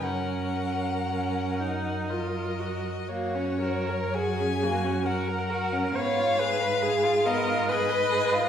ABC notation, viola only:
X:1
M:3/4
L:1/8
Q:1/4=66
K:F#
V:1 name="Viola"
C2 C D E F | F A G F A2 | c _c _A ^A c2 |]